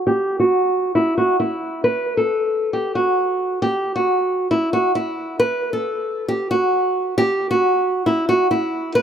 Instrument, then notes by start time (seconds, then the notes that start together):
nylon-string guitar
0.07 G4
0.40 F#4
0.95 E4
1.18 F#4
1.40 E4
1.84 B4
2.17 A4
2.73 G4
2.95 F#4
3.62 G4
3.96 F#4
4.51 E4
4.73 F#4
4.95 E4
5.40 B4
5.73 A4
6.28 G4
6.51 F#4
7.18 G4
7.51 F#4
8.06 E4
8.29 F#4
8.51 E4
8.95 B4